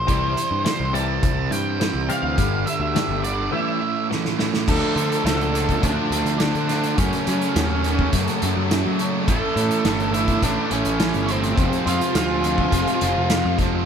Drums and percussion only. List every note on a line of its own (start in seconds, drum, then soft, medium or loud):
0.08 kick loud
0.08 closed hi-hat medium
0.37 closed hi-hat medium
0.66 snare loud
0.66 closed hi-hat medium
0.95 closed hi-hat medium
1.23 kick loud
1.23 closed hi-hat medium
1.52 closed hi-hat medium
1.81 snare loud
1.81 closed hi-hat medium
2.10 closed hi-hat medium
2.38 kick medium
2.38 closed hi-hat medium
2.67 closed hi-hat medium
2.96 snare loud
2.96 closed hi-hat medium
3.24 closed hi-hat medium
4.11 snare medium
4.25 snare medium
4.39 snare medium
4.54 snare medium
4.68 kick loud
4.68 crash loud
4.97 closed hi-hat medium
5.12 closed hi-hat soft
5.27 snare loud
5.27 closed hi-hat loud
5.41 closed hi-hat soft
5.55 closed hi-hat medium
5.69 kick medium
5.69 closed hi-hat soft
5.83 kick loud
5.83 closed hi-hat medium
6.12 closed hi-hat medium
6.26 closed hi-hat soft
6.40 snare loud
6.40 closed hi-hat loud
6.55 closed hi-hat soft
6.69 snare soft
6.69 closed hi-hat medium
6.83 closed hi-hat soft
6.98 kick loud
6.98 closed hi-hat loud
7.13 closed hi-hat soft
7.27 closed hi-hat medium
7.41 closed hi-hat soft
7.56 snare loud
7.56 closed hi-hat loud
7.84 closed hi-hat medium
7.99 kick medium
8.13 kick loud
8.13 closed hi-hat loud
8.27 closed hi-hat soft
8.42 closed hi-hat medium
8.71 snare loud
8.71 closed hi-hat loud
8.99 closed hi-hat medium
9.28 kick loud
9.28 closed hi-hat medium
9.57 closed hi-hat medium
9.71 closed hi-hat soft
9.85 snare loud
9.85 closed hi-hat medium
10.00 closed hi-hat soft
10.14 closed hi-hat medium
10.28 kick medium
10.28 closed hi-hat soft
10.42 kick loud
10.42 closed hi-hat loud
10.71 closed hi-hat medium
10.85 closed hi-hat soft
11.00 snare loud
11.00 closed hi-hat loud
11.14 closed hi-hat soft
11.28 closed hi-hat medium
11.43 closed hi-hat soft
11.58 kick loud
11.58 closed hi-hat medium
11.73 closed hi-hat soft
11.87 closed hi-hat medium
12.01 closed hi-hat soft
12.15 snare loud
12.15 closed hi-hat loud
12.44 closed hi-hat medium
12.58 kick medium
12.72 kick loud
12.72 closed hi-hat loud
12.87 closed hi-hat soft
13.01 closed hi-hat medium
13.30 snare loud
13.30 closed hi-hat loud
13.59 kick medium
13.59 snare soft
13.59 closed hi-hat medium